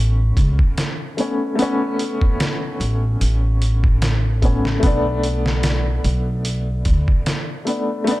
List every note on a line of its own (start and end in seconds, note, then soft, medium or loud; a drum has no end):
0.00 0.33 A1 medium
0.00 1.12 A3 medium
0.00 1.13 B3 medium
0.00 1.15 C#4 loud
0.37 0.57 C#2 medium
0.37 kick medium
0.37 closed hi-hat medium
0.59 kick medium
0.78 snare loud
0.78 closed hi-hat medium
1.17 1.54 A3 medium
1.17 1.55 B3 medium
1.17 1.55 C#4 medium
1.17 closed hi-hat medium
1.55 4.36 A3 medium
1.55 4.38 B3 medium
1.55 closed hi-hat medium
1.62 4.40 C#4 loud
1.99 closed hi-hat medium
2.21 kick medium
2.40 snare loud
2.40 closed hi-hat medium
2.80 3.16 A1 medium
2.80 closed hi-hat medium
3.21 4.79 A1 medium
3.21 closed hi-hat medium
3.62 closed hi-hat medium
3.84 kick medium
4.02 snare loud
4.02 closed hi-hat medium
4.42 4.78 A3 medium
4.42 4.79 B3 medium
4.42 4.80 C#4 medium
4.42 kick medium
4.42 closed hi-hat medium
4.65 snare soft
4.80 6.01 B1 medium
4.80 7.61 A3 medium
4.80 7.63 B3 medium
4.80 kick loud
4.80 closed hi-hat medium
4.87 7.64 D4 loud
5.23 closed hi-hat medium
5.46 snare medium
5.63 snare loud
5.63 closed hi-hat medium
6.04 6.82 B1 medium
6.04 closed hi-hat medium
6.45 closed hi-hat medium
6.85 7.05 D2 medium
6.85 kick medium
6.85 closed hi-hat medium
7.08 kick medium
7.26 snare loud
7.26 closed hi-hat medium
7.65 8.02 A3 medium
7.65 8.03 B3 medium
7.65 8.04 D4 medium
7.65 closed hi-hat medium
8.04 8.20 A3 loud
8.04 8.20 B3 medium
8.04 closed hi-hat medium
8.11 8.20 D4 loud